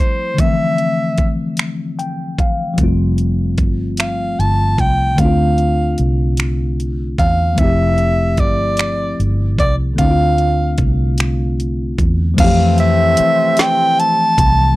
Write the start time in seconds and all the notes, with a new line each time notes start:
Already playing: F3 G3 A3 C4 E4
0.00 C5, closed hi-hat
0.34 D3 F3
0.38 A3 E5, kick, closed hi-hat
0.43 E3 C4
0.78 closed hi-hat
1.18 kick, closed hi-hat
1.57 finger snap, closed hi-hat
1.99 G5, closed hi-hat
2.39 F5, kick, closed hi-hat
2.73 F3 G3
2.78 F1 A3 C4, kick, closed hi-hat
2.84 F4
3.18 closed hi-hat
3.58 G1, kick, closed hi-hat
3.97 F5, finger snap, closed hi-hat
4.39 G1 A5, closed hi-hat
4.78 C2 G5, kick, closed hi-hat
5.14 D3 A3, kick, closed hi-hat
5.19 D2 C4 D4 F5
5.25 F4
5.58 closed hi-hat
5.98 C2, closed hi-hat
6.37 finger snap, closed hi-hat
6.80 closed hi-hat
7.18 E2 F5, kick, closed hi-hat
7.53 F3 A3
7.58 F1 C4 E4 E5, kick, closed hi-hat
7.64 G4
7.98 closed hi-hat
8.37 G1 D5, kick, closed hi-hat
8.77 finger snap, closed hi-hat
9.19 G1, closed hi-hat
9.59 C2 D5, kick, closed hi-hat
9.93 D3 A3
9.98 D2 C4 D4 F5, kick, closed hi-hat
10.04 E4
10.10 F4
10.38 closed hi-hat
10.78 C2, kick, closed hi-hat
11.18 finger snap, closed hi-hat
11.60 closed hi-hat
11.98 E2, kick, closed hi-hat
12.34 C3 F3 G#3 C4, kick
12.38 F2 E3 A3 C4 F5, closed hi-hat, crash
12.43 A3 G4
12.78 E5, closed hi-hat
13.17 muted fingered electric bass stroke, closed hi-hat
13.57 G5, snare, closed hi-hat
14.00 A5, closed hi-hat
14.38 C2, kick, closed hi-hat